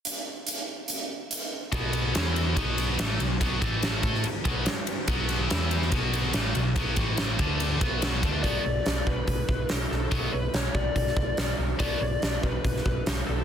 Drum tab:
RD |----------------|x-x-x-x-x-x-x-x-|x-x-x-x-x-x-x-x-|x-x-x-x-x-x-x-x-|
HH |x---x---x---x---|----------------|----------------|----------------|
SD |----------------|----o-------o---|----o--o----o---|--o-o--o----o---|
BD |----------------|o-------o-------|o-o---o---o-----|o-------o-------|

RD |x-x-x-x-x-x-x-x-|----------------|----------------|----------------|
HH |----------------|o---o---o---o---|o---o---o---o---|o---o---o---o---|
SD |----o-------o---|----o-------o-o-|----o----o--o---|----o----o--o---|
BD |o-o---o---o---o-|o-----o-o-o-----|o-----o-o-o-----|o-----o-o-o-----|